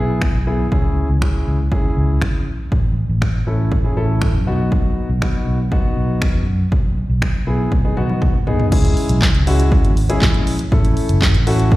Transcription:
Already playing: fingered electric bass B1, grand piano B3 E4 G#4
0.22 finger snap, kick
0.34 fingered electric bass B1
0.47 grand piano B3 E4 G#4
0.72 fingered electric bass C#2, grand piano C#4 E4 G#4, kick
1.09 fingered electric bass C#2
1.22 grand piano C#4 E4 G#4, finger snap, kick
1.47 fingered electric bass C#2
1.72 grand piano C#4 E4 G#4, kick
1.97 fingered electric bass C#2
2.22 finger snap, kick
2.34 fingered electric bass A#1
2.72 fingered electric bass A1, kick
3.09 fingered electric bass A1
3.22 finger snap, kick
3.47 fingered electric bass A1, grand piano C#4 E4 A4
3.72 kick
3.84 grand piano C#4 E4 G#4
3.97 fingered electric bass A1, grand piano C#4 E4 A4
4.22 finger snap, kick
4.34 fingered electric bass F#2
4.47 fingered electric bass B1, grand piano B3 D#4 F#4
4.72 kick
5.09 fingered electric bass B1
5.22 grand piano B3 D#4 F#4, finger snap, kick
5.47 fingered electric bass B1
5.72 grand piano B3 D#4 F#4, kick
5.97 fingered electric bass B1
6.22 finger snap, kick
6.34 fingered electric bass F#2
6.72 fingered electric bass B1, kick
7.09 fingered electric bass B1
7.22 finger snap, kick
7.47 fingered electric bass B1, grand piano B3 E4 G#4
7.72 fingered electric bass B1, kick, high tom
7.84 grand piano B3 D#4 G#4
7.97 fingered electric bass B1, grand piano B3 D#4 F#4, mid tom
8.10 mid tom
8.22 kick, mid tom
8.34 fingered electric bass C2
8.47 grand piano B3 D#4 G#4, floor tom
8.60 floor tom
8.72 fingered electric bass C#2, grand piano G#3 C#4 E4 G#4, kick, crash
8.85 closed hi-hat
8.97 open hi-hat
9.09 fingered electric bass B1, closed hi-hat
9.22 kick, snare, clap
9.34 fingered electric bass C#2, closed hi-hat
9.47 grand piano G#3 C#4 E4 F#4, open hi-hat
9.60 closed hi-hat
9.72 kick
9.84 fingered electric bass G#1, closed hi-hat
9.97 open hi-hat
10.09 grand piano G#3 C#4 E4 G#4, closed hi-hat
10.22 fingered electric bass A#1, kick, snare, clap
10.34 closed hi-hat
10.47 open hi-hat
10.59 closed hi-hat
10.72 fingered electric bass A1, grand piano A3 C#4 E4 A4, kick
10.85 closed hi-hat
10.97 open hi-hat
11.09 fingered electric bass F#1, closed hi-hat
11.22 kick, snare, clap
11.35 fingered electric bass A1, closed hi-hat
11.47 grand piano A3 C#4 E4 F#4, open hi-hat
11.60 closed hi-hat
11.72 kick

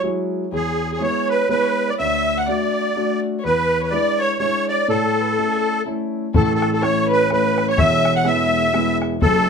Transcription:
Already playing: harp F#4 G#4 B4 C#5
0.03 grand piano F#3 G#3 E4
0.52 grand piano E2, fiddle G#4, harp G#4, accordion G#4
0.90 fiddle G#4, harp G#4, accordion G#4
0.99 grand piano G#3 B3 E4, fiddle C#5, harp C#5, accordion C#5
1.29 fiddle B4, accordion B4, harp B4
1.49 grand piano G#3 B3 E4, accordion B4, fiddle B4, harp B4
1.61 fiddle C#5
1.73 fiddle B4
1.89 fiddle D5, accordion D5, harp D5
1.99 grand piano D2, accordion E5, harp E5, fiddle E5
2.37 harp F#5, fiddle F#5, accordion F#5
2.46 grand piano A3 D4 F#4, fiddle D5, accordion D5, harp D5
2.96 grand piano A3 D4 F#4
3.39 fiddle C#5
3.43 grand piano E2, harp B4, fiddle B4, accordion B4
3.80 harp B4, fiddle B4 C#5, accordion B4
3.90 grand piano G#3 D4 E4, accordion D5, fiddle D5, harp D5
4.20 fiddle C#5, harp C#5, accordion C#5
4.39 grand piano G#3 D4 E4, accordion C#5, fiddle C#5, harp C#5
4.69 accordion D5, fiddle D5, harp D5
4.88 grand piano A2, accordion A4, harp A4, fiddle A4
5.20 fiddle A4 B4
5.37 grand piano A3 C#4 E4
5.52 fiddle G#4 A4
5.86 grand piano A3 C#4 E4
6.34 grand piano A1 A2, fiddle A4, harp A4, accordion A4, bodhran
6.44 accordion A4
6.55 accordion A4, fiddle A4, harp A4
6.62 bodhran
6.71 fiddle A4, accordion A4, harp A4
6.82 grand piano A3 C#4 E4, accordion C#5, fiddle C#5, harp C#5, bodhran
7.08 fiddle B4, harp B4
7.13 accordion B4
7.30 grand piano A3 C#4 E4, fiddle B4, harp B4, accordion B4, bodhran
7.58 bodhran
7.68 fiddle C#5, harp C#5, accordion C#5
7.77 grand piano E1 E2, fiddle E5, accordion E5, harp E5, bodhran
8.05 bodhran
8.15 accordion F#5, harp F#5, fiddle F#5
8.25 grand piano G#3 B3 E4, accordion E5, harp E5, fiddle E5, bodhran
8.74 grand piano G#3 B3 E4, bodhran
9.02 bodhran
9.22 grand piano F#1 F#2, fiddle A4, accordion A4, harp A4, bodhran

